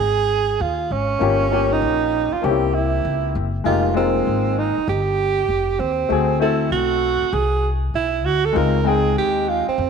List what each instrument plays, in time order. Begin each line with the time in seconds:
Already playing: tenor saxophone G#4
0.00 upright bass G#1
0.60 upright bass D#2, tenor saxophone F4
0.91 upright bass G#1, tenor saxophone C#4
1.19 upright bass G1, upright piano A#3 C#4 F4 G4
1.50 upright piano A#3 C#4 F4 G4
1.72 tenor saxophone D#4
1.82 upright bass A#1
2.33 tenor saxophone F4, muted upright bass stroke
2.42 upright bass C2, upright piano A#3 C4 C#4 G4, tenor saxophone G4
2.50 upright piano E4
2.74 tenor saxophone E4
3.05 upright bass C#2
3.35 upright bass F#1
3.64 upright bass F1, upright piano G#3 A#3 D#4 G4, tenor saxophone F4
3.94 upright piano G#3 A#3 D#4 F4, tenor saxophone C4
4.27 upright bass G#1
4.58 tenor saxophone D#4
4.77 muted upright bass stroke
4.88 upright bass G1, tenor saxophone G4
5.48 upright bass F1
5.80 upright bass D#2, tenor saxophone C4
6.09 upright bass D2, upright piano A3 C4 F#4 G#4
6.40 upright piano A3 C4 F#4 A4, tenor saxophone E4
6.71 upright bass B1, tenor saxophone F#4
7.22 muted upright bass stroke
7.33 upright bass C2, tenor saxophone G#4
7.94 upright bass B1, tenor saxophone E4
8.25 upright bass D2, tenor saxophone F#4
8.45 tenor saxophone A4
8.53 upright bass C#2, upright piano G#3 C4 D#4 F4, tenor saxophone A#4
8.84 upright piano G#3 C4 D#4 G5, tenor saxophone G#4
9.16 upright bass D#2, tenor saxophone G4
9.48 tenor saxophone F4
9.68 tenor saxophone C4, muted upright bass stroke
9.78 upright bass F2